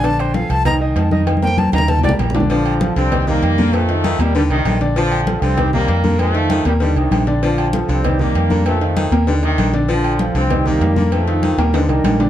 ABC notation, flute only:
X:1
M:4/4
L:1/8
Q:1/4=195
K:Bb
V:1 name="Flute"
a c f a b z3 | z g a b a d z2 | z8 | z8 |
z8 | z8 | z8 | z8 |
z8 | z8 |]